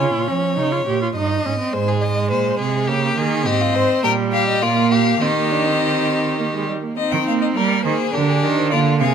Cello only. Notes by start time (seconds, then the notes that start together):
0.00 C#3
0.14 A#2
0.29 F3
0.57 C#3
0.86 A#2
1.15 G2
1.45 G#2
1.73 G#2
2.30 A#2
2.59 C3
2.88 C#3
3.17 D#3
3.46 G#2
3.75 G#2
4.04 A#2
4.62 A#2
5.21 D#3
7.13 D#3
7.27 A#3
7.56 G3
7.85 D#3
8.14 D3
8.43 D#3
8.72 D3
9.01 C3